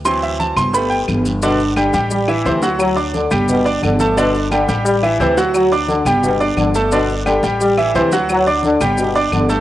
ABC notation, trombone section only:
X:1
M:4/4
L:1/8
Q:1/4=175
K:G
V:1 name="Trombone section" clef=bass
z8 | B,,2 D,2 G,2 E,2 | F,2 D,2 B,,2 D,2 | B,,2 D,2 G,2 E,2 |
F,2 D,2 B,,2 D,2 | B,,2 D,2 G,2 E,2 | F,2 D,2 B,,2 D,2 |]